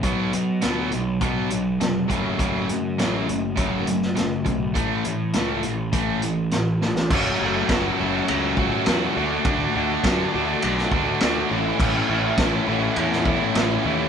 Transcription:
<<
  \new Staff \with { instrumentName = "Tonewheel organ" } { \time 4/4 \key fis \minor \tempo 4 = 102 << { r1 | r1 | r1 | <b bis d' e' eis' g' a' b' bis' d'' e'' eis''>8 r2. r8 |
r1 | r1 | } \\ { r1 | r1 | r1 | <a fis' cis''>2.~ <a fis' cis''>8 <a fis' d''>8~ |
<a fis' d''>2.~ <a fis' d''>8 <a e' cis''>8~ | <a e' cis''>1 | } >> }
  \new Staff \with { instrumentName = "Overdriven electric guitar" } { \time 4/4 \key fis \minor <b, fis b>8 <b, fis>8 <b, fis b>8 <b, fis>8 <b, fis b>8 <b, fis>8 <b, fis>8 <fis a cis'>8 | <fis a cis'>8 <fis a>8 <fis a cis'>8 <fis a>8 <fis a cis'>8 <fis a>8 <fis a>8 <fis a>8 | <a, e a>8 <a, e>8 <a, e a>8 <a, e>8 <a, e a>8 <a, e>8 <a, e>8 <a, e>8 | <fis a cis' fis'>8 <fis a cis' fis'>8 <fis a cis' fis'>8 <fis a cis' fis'>8 <fis a cis' fis'>8 <fis a cis' fis'>8 <fis a cis' fis'>8 <d a d' fis'>8 |
<d a d' fis'>8 <d a d' fis'>8 <d a d' fis'>8 <d a d' fis'>8 <d a d' fis'>8 <d a d' fis'>8 <d a d' fis'>8 <a, e a cis' e'>8 | <a, e a cis' e'>8 <a, e a cis' e'>8 <a, e a cis' e'>8 <a, e a cis' e'>8 <a, e a cis' e'>8 <a, e a cis' e'>8 <a, e a cis' e'>8 <a, e a cis' e'>8 | }
  \new Staff \with { instrumentName = "Distorted electric guitar" } { \clef bass \time 4/4 \key fis \minor <b, fis b>8 <b, fis>8 <b, fis b>8 <b, fis>8 <b, fis b>8 <b, fis>8 <b, fis>8 <fis, cis fis>8 | <fis, cis fis>8 <fis, cis>8 <fis, cis fis>8 <fis, cis>8 <fis, cis fis>8 <fis, cis>8 <fis, cis>8 <fis, cis>8 | <a, e a>8 <a, e>8 <a, e a>8 <a, e>8 <a, e a>8 <a, e>8 <a, e>8 <a, e>8 | <fis, cis fis a cis' fis'>8 <fis, cis fis a cis' fis'>8 <fis, cis fis a cis' fis'>8 <fis, cis fis a cis' fis'>8 <fis, cis fis a cis' fis'>8 <fis, cis fis a cis' fis'>8 <fis, cis fis a cis' fis'>8 <d a d' fis'>8 |
<d a d' fis'>8 <d a d' fis'>8 <d a d' fis'>8 <d a d' fis'>8 <d a d' fis'>8 <d a d' fis'>8 <d a d' fis'>8 <a, e a cis' e'>8 | <a, e a cis' e'>8 <a, e a cis' e'>8 <a, e a cis' e'>8 <a, e a cis' e'>8 <a, e a cis' e'>8 <a, e a cis' e'>8 <a, e a cis' e'>8 <a, e a cis' e'>8 | }
  \new Staff \with { instrumentName = "Picked electric bass" } { \clef bass \time 4/4 \key fis \minor b,,8 b,8 d,8 b,,8 b,,8 b,,8 eis,,8 fis,,8 | fis,,8 fis,8 a,,8 fis,,8 fis,,8 fis,,8 fis,,8 b,,8 | a,,8 a,8 cis,8 a,,8 a,,8 a,,8 a,,8 a,,8 | fis,,8 fis,,8 fis,,8 fis,,8 cis,4 e,8 d,8 |
d,8 d,8 fis,8 d,8 b,,8 d,8 d,8 a,,8 | a,,8 a,,8 a,,8 a,,8 e,4 a,,8 dis,8 | }
  \new DrumStaff \with { instrumentName = "Drums" } \drummode { \time 4/4 <hh bd>8 hh8 <hh sn>8 hh8 <hh bd>8 hh8 <hh sn>8 <hh bd>8 | <hh bd>8 hh8 <hh sn>8 hh8 <hh bd>8 hh16 sn16 <hh sn>8 <hh bd>8 | <hh bd>8 hh8 <hh sn>8 hh8 <hh bd>8 hh8 <hh sn>8 sn16 sn16 | <cymc bd>4 <bd rb sn>4 rb8 bd8 <rb sn>4 |
<bd rb>4 <bd rb sn>4 rb16 sn16 bd8 <rb sn>4 | <cymc bd>4 <bd rb sn>4 rb16 sn16 bd8 <rb sn>4 | }
>>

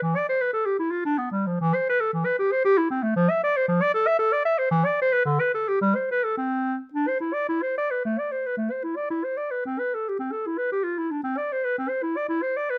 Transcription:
\new Staff \with { instrumentName = "Clarinet" } { \time 3/4 \key c \major \tempo 4 = 114 e16 d''16 c''16 b'16 a'16 g'16 e'16 f'16 d'16 b16 g16 f16 | e16 c''16 b'16 a'16 e16 b'16 g'16 c''16 g'16 e'16 c'16 a16 | f16 e''16 d''16 c''16 f16 d''16 a'16 e''16 a'16 d''16 e''16 c''16 | e16 d''16 c''16 b'16 d16 b'16 a'16 g'16 g16 c''16 b'16 a'16 |
c'4 d'16 c''16 e'16 d''16 e'16 c''16 d''16 b'16 | \key a \minor a16 d''16 c''16 b'16 a16 c''16 e'16 d''16 e'16 c''16 d''16 b'16 | c'16 b'16 a'16 g'16 c'16 a'16 e'16 b'16 g'16 f'16 e'16 d'16 | c'16 d''16 c''16 b'16 c'16 c''16 e'16 d''16 e'16 c''16 d''16 b'16 | }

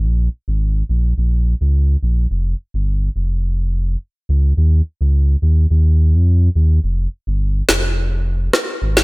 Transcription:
<<
  \new Staff \with { instrumentName = "Sub bass" } { \clef bass \time 4/4 \key f \minor \tempo 4 = 106 bes,,8 r16 aes,,8. bes,,8 bes,,8. des,8. bes,,8 | f,,8 r16 g,,8. f,,4. r8 des,8 | ees,8 r16 des,8. ees,8 ees,8. f,8. ees,8 | f,,8 r16 g,,8. f,,4. r8 aes,,8 | }
  \new DrumStaff \with { instrumentName = "Drums" } \drummode { \time 4/4 r4 r4 r4 r4 | r4 r4 r4 r4 | r4 r4 r4 r4 | r4 r8 sn8 r4 <ss sn>8. sn16 | }
>>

